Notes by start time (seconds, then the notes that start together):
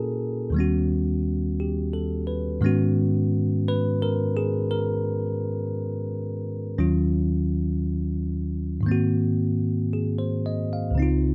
Already playing: A#2 A#3 C#4 E4 F#4 G#4 A4 A#4
0.50 D#2 D#3
0.54 G3 B3 C#4
0.60 F#4
1.60 G4
1.93 A4
2.27 B4
2.61 G#2 D#3 G#3 B3 C#4
2.66 F#4
3.68 B4
4.02 A#4
4.37 G#4
4.71 A#4
6.78 D#2 D#3 F#3 C#4 F4
8.81 G#2 D#3
8.86 A#3 C4
8.92 F#4
9.93 G#4
10.19 C5
10.46 D#5
10.73 F5
10.91 C#2
10.95 C#3 C4
10.99 D#4 F4